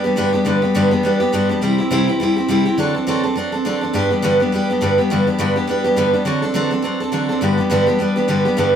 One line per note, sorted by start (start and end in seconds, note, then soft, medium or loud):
0.04 0.16 G3 soft
0.04 0.16 B3 soft
0.04 0.17 D4 medium
0.04 0.16 G4 medium
0.16 0.34 G2 medium
0.16 0.34 D3 medium
0.16 0.34 G3 medium
0.16 0.34 B3 medium
0.16 0.33 D4 medium
0.16 0.31 G4 loud
0.33 0.45 G3 soft
0.33 0.45 B3 soft
0.33 0.45 D4 medium
0.33 0.45 G4 medium
0.45 0.62 G2 medium
0.45 0.63 D3 medium
0.45 0.63 G3 medium
0.45 0.63 B3 medium
0.45 0.62 D4 medium
0.45 0.61 G4 medium
0.62 0.74 G3 soft
0.62 0.75 B3 medium
0.62 0.75 D4 medium
0.62 0.75 G4 medium
0.74 0.92 G2 medium
0.74 0.92 D3 loud
0.74 0.92 G3 medium
0.74 0.92 B3 loud
0.74 0.91 D4 loud
0.74 0.90 G4 medium
0.91 1.02 G3 soft
0.91 1.03 B3 medium
0.91 1.04 D4 medium
0.91 1.04 G4 medium
1.03 1.21 G3 medium
1.03 1.21 B3 medium
1.03 1.20 D4 medium
1.03 1.19 G4 medium
1.20 1.32 G3 soft
1.20 1.33 B3 soft
1.20 1.33 D4 medium
1.20 1.33 G4 medium
1.32 1.50 G2 medium
1.32 1.50 D3 medium
1.32 1.50 G3 medium
1.32 1.50 B3 loud
1.32 1.50 D4 loud
1.32 1.48 G4 loud
1.49 1.61 G3 soft
1.49 1.62 B3 medium
1.49 1.63 D4 medium
1.49 1.62 G4 medium
1.61 1.79 C3 medium
1.61 1.79 G3 medium
1.61 1.80 C4 medium
1.61 1.79 E4 medium
1.61 1.77 G4 medium
1.78 1.90 C4 soft
1.78 1.91 E4 medium
1.78 1.91 G4 medium
1.91 2.08 C3 loud
1.91 2.08 G3 medium
1.91 2.09 C4 loud
1.91 2.08 E4 loud
1.91 2.06 G4 loud
2.08 2.20 C4 soft
2.08 2.21 E4 medium
2.08 2.20 G4 medium
2.20 2.37 G3 medium
2.20 2.38 C4 medium
2.20 2.37 E4 medium
2.20 2.35 G4 medium
2.36 2.49 C4 soft
2.36 2.49 E4 medium
2.36 2.49 G4 medium
2.48 2.66 C3 medium
2.48 2.66 G3 medium
2.48 2.67 C4 medium
2.48 2.66 E4 medium
2.48 2.64 G4 medium
2.65 2.78 C4 soft
2.65 2.79 E4 medium
2.65 2.78 G4 medium
2.78 2.95 D3 medium
2.78 2.96 F#3 medium
2.78 2.96 C4 medium
2.78 2.95 D4 medium
2.78 2.93 A4 medium
2.94 3.07 C4 soft
2.94 3.07 D4 soft
2.94 3.07 A4 medium
3.07 3.24 D3 medium
3.07 3.24 F#3 medium
3.07 3.25 C4 medium
3.07 3.24 D4 loud
3.07 3.22 A4 loud
3.23 3.36 C4 soft
3.23 3.37 D4 soft
3.23 3.36 A4 medium
3.36 3.53 F#3 medium
3.36 3.54 C4 medium
3.36 3.53 D4 medium
3.36 3.51 A4 medium
3.52 3.65 C4 soft
3.52 3.65 D4 medium
3.52 3.65 A4 medium
3.65 3.82 D3 medium
3.65 3.82 F#3 medium
3.65 3.83 C4 medium
3.65 3.82 D4 medium
3.65 3.80 A4 medium
3.81 3.94 C4 medium
3.81 3.94 D4 medium
3.81 3.94 A4 medium
3.93 4.11 G2 medium
3.93 4.11 D3 medium
3.93 4.11 G3 medium
3.93 4.11 B3 medium
3.93 4.11 D4 loud
3.93 4.09 G4 medium
4.10 4.22 G3 soft
4.10 4.23 B3 medium
4.10 4.23 D4 medium
4.10 4.23 G4 medium
4.22 4.40 G2 loud
4.22 4.40 D3 medium
4.22 4.41 G3 medium
4.22 4.41 B3 loud
4.22 4.40 D4 medium
4.22 4.38 G4 loud
4.40 4.51 G3 medium
4.40 4.52 B3 medium
4.40 4.53 D4 soft
4.40 4.52 G4 medium
4.52 4.70 G3 medium
4.52 4.70 B3 medium
4.52 4.70 D4 medium
4.52 4.68 G4 medium
4.70 4.81 G3 soft
4.70 4.81 B3 medium
4.70 4.82 D4 medium
4.70 4.82 G4 medium
4.81 4.98 G2 medium
4.81 4.99 D3 medium
4.81 4.99 G3 loud
4.81 4.99 B3 medium
4.81 4.98 D4 medium
4.81 4.97 G4 medium
4.98 5.10 G3 medium
4.98 5.10 B3 soft
4.98 5.11 D4 soft
4.98 5.10 G4 medium
5.10 5.27 G2 medium
5.10 5.28 D3 medium
5.10 5.28 G3 medium
5.10 5.28 B3 medium
5.10 5.27 D4 medium
5.10 5.26 G4 medium
5.27 5.38 G3 soft
5.27 5.39 B3 soft
5.27 5.39 D4 medium
5.27 5.39 G4 medium
5.38 5.56 G2 medium
5.38 5.56 D3 medium
5.38 5.57 G3 loud
5.38 5.57 B3 medium
5.38 5.56 D4 medium
5.38 5.55 G4 loud
5.56 5.66 G3 soft
5.56 5.68 B3 soft
5.56 5.68 D4 medium
5.56 5.68 G4 medium
5.67 5.85 G3 medium
5.67 5.85 B3 medium
5.67 5.84 D4 medium
5.67 5.83 G4 medium
5.84 5.96 G3 soft
5.84 5.97 B3 medium
5.84 5.97 D4 medium
5.84 5.97 G4 medium
5.96 6.14 G2 medium
5.96 6.14 D3 medium
5.96 6.14 G3 loud
5.96 6.14 B3 loud
5.96 6.13 D4 medium
5.96 6.12 G4 loud
6.13 6.25 G3 soft
6.13 6.26 B3 soft
6.13 6.26 D4 medium
6.13 6.26 G4 medium
6.25 6.43 D3 medium
6.25 6.43 F#3 medium
6.25 6.43 C4 medium
6.25 6.43 D4 medium
6.25 6.41 A4 medium
6.42 6.54 C4 soft
6.42 6.54 D4 medium
6.42 6.55 A4 medium
6.54 6.72 D3 medium
6.54 6.72 F#3 medium
6.54 6.72 C4 loud
6.54 6.71 D4 loud
6.54 6.70 A4 loud
6.71 6.83 C4 medium
6.71 6.84 D4 medium
6.71 6.84 A4 medium
6.82 7.00 F#3 medium
6.82 7.01 C4 medium
6.82 7.01 D4 medium
6.82 6.99 A4 medium
7.00 7.12 C4 medium
7.00 7.12 D4 medium
7.00 7.13 A4 medium
7.12 7.30 D3 medium
7.12 7.30 F#3 medium
7.12 7.30 C4 medium
7.12 7.29 D4 medium
7.12 7.28 A4 loud
7.29 7.42 C4 soft
7.29 7.42 D4 medium
7.29 7.42 A4 medium
7.41 7.59 G2 medium
7.41 7.59 D3 medium
7.41 7.59 G3 medium
7.41 7.59 B3 medium
7.41 7.57 D4 medium
7.41 7.56 G4 medium
7.57 7.70 G3 medium
7.57 7.70 B3 medium
7.57 7.70 D4 medium
7.57 7.70 G4 medium
7.70 7.87 G2 medium
7.70 7.88 D3 loud
7.70 7.88 G3 loud
7.70 7.88 B3 loud
7.70 7.87 D4 loud
7.70 7.85 G4 loud
7.87 7.98 G3 medium
7.87 7.99 B3 medium
7.87 8.00 D4 medium
7.87 7.99 G4 medium
7.99 8.16 G3 medium
7.99 8.17 B3 medium
7.99 8.16 D4 medium
7.99 8.15 G4 medium
8.16 8.28 G3 soft
8.16 8.28 B3 medium
8.16 8.29 D4 medium
8.16 8.28 G4 medium
8.28 8.45 G2 medium
8.28 8.46 D3 loud
8.28 8.46 G3 medium
8.28 8.46 B3 medium
8.28 8.45 D4 medium
8.28 8.44 G4 medium
8.45 8.57 G3 soft
8.45 8.57 B3 soft
8.45 8.57 D4 soft
8.45 8.58 G4 medium
8.57 8.74 G2 medium
8.57 8.75 D3 medium
8.57 8.75 G3 medium
8.57 8.75 B3 loud
8.57 8.74 D4 medium
8.57 8.73 G4 medium